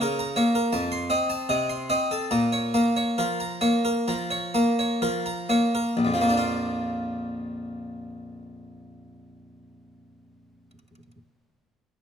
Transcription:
0.01 0.38 C#3 soft
0.01 0.19 A#4 medium
0.19 0.37 A#5 medium
0.36 0.73 A#3 soft
0.36 0.55 C#5 soft
0.55 0.73 A#4 soft
0.73 1.09 F2 medium
0.73 0.92 A5 medium
0.92 1.11 C6 medium
1.10 1.51 C4 soft
1.10 1.30 D#5 soft
1.30 1.50 A5 soft
1.49 1.92 C3 soft
1.49 1.70 D#5 soft
1.69 1.91 C6 soft
1.90 2.31 C4 soft
1.90 2.12 D#5 soft
2.11 2.32 A4 soft
2.31 2.73 A#2 soft
2.31 2.54 A#5 medium
2.52 2.75 C#5 soft
2.74 3.21 A#3 soft
2.74 2.97 A#5 soft
2.97 3.20 C#5 soft
3.18 3.66 F3 soft
3.18 3.42 A#4 soft
3.40 3.64 A#5 soft
3.61 4.10 A#3 soft
3.61 3.86 C#5 soft
3.85 4.10 A#4 soft
4.08 4.58 F3 soft
4.08 4.33 A#5 soft
4.31 4.56 C#5 soft
4.54 5.05 A#3 soft
4.54 4.80 A#5 soft
4.79 5.04 C#5 soft
5.02 5.53 F3 soft
5.02 5.28 A#4 soft
5.26 5.52 A#5 soft
5.49 5.98 A#3 soft
5.49 5.76 C#5 soft
5.75 5.98 A#4 soft
5.97 10.71 A#1 soft
6.05 10.78 F2 soft
6.14 10.87 F3 soft
6.21 10.95 A#3 soft
6.29 11.03 D4 soft
6.37 11.11 F4 soft

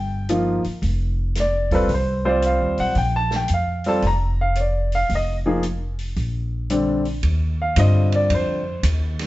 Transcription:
0.00 0.61 G1 medium
0.00 0.27 G5 medium
0.29 0.61 F3 medium
0.29 0.61 A#3 soft
0.29 0.62 D#4 soft
0.29 0.62 F4 medium
0.29 closed hi-hat soft
0.64 muted upright bass stroke soft
0.64 open hi-hat soft
0.82 1.85 F1 medium
0.82 kick soft
0.82 open hi-hat soft
1.35 snare soft
1.35 closed hi-hat medium
1.40 1.73 D5 medium
1.71 1.88 G3 medium
1.71 1.88 C4 medium
1.71 1.88 F4 medium
1.71 1.88 A4 medium
1.71 1.90 B4 medium
1.71 kick soft
1.71 open hi-hat soft
1.89 2.56 C2 medium
1.89 kick soft
1.89 open hi-hat soft
1.94 2.24 C5 medium
2.25 2.93 G3 medium
2.25 2.93 C4 medium
2.25 2.93 F4 medium
2.25 2.93 C5 medium
2.29 2.44 D5 medium
2.42 closed hi-hat soft
2.46 2.79 F5 medium
2.61 2.77 D#2 medium
2.78 2.95 B1 medium
2.78 2.96 F#5 medium
2.78 open hi-hat soft
2.95 3.45 A#1 medium
2.95 3.14 G5 medium
2.95 kick soft
2.95 open hi-hat soft
3.16 3.32 A5 medium
3.31 snare soft
3.36 3.51 G5 medium
3.48 3.99 F2 medium
3.48 closed hi-hat medium
3.54 3.86 F5 medium
3.84 4.02 G3 medium
3.84 4.02 C4 medium
3.84 4.02 F4 medium
3.84 4.02 A4 medium
3.84 open hi-hat soft
3.89 4.04 A5 medium
4.02 5.06 F1 medium
4.02 kick soft
4.02 open hi-hat soft
4.07 4.40 A#5 medium
4.41 4.57 F5 medium
4.55 4.60 C#5 soft
4.55 closed hi-hat soft
4.61 4.93 D5 medium
4.92 5.11 F5 medium
4.92 open hi-hat soft
5.09 6.13 F1 medium
5.09 kick soft
5.09 open hi-hat soft
5.15 5.35 D#5 medium
5.46 5.62 F3 medium
5.46 5.62 A#3 medium
5.46 5.62 D#4 medium
5.46 5.62 G#4 medium
5.63 closed hi-hat soft
5.99 open hi-hat soft
6.16 7.19 A#1 medium
6.16 kick soft
6.16 open hi-hat soft
6.70 7.02 D3 medium
6.70 7.02 G3 soft
6.70 7.02 C4 soft
6.70 7.03 D4 medium
6.70 closed hi-hat soft
7.05 open hi-hat soft
7.23 7.75 D#2 medium
7.23 kick soft
7.23 ride medium
7.62 7.78 F5 medium
7.76 8.29 G2 medium
7.76 8.59 D3 soft
7.76 8.59 G3 soft
7.76 8.59 C4 soft
7.76 8.59 F4 medium
7.76 8.13 D#5 medium
7.76 kick soft
7.76 hi-hat pedal medium
7.76 ride medium
8.12 8.31 D5 medium
8.12 ride soft
8.30 8.82 F2 medium
8.30 kick soft
8.30 ride medium
8.35 8.82 C5 medium
8.83 9.27 D#2 medium
8.83 kick soft
8.83 hi-hat pedal medium
8.83 ride medium
9.19 snare soft
9.19 ride soft

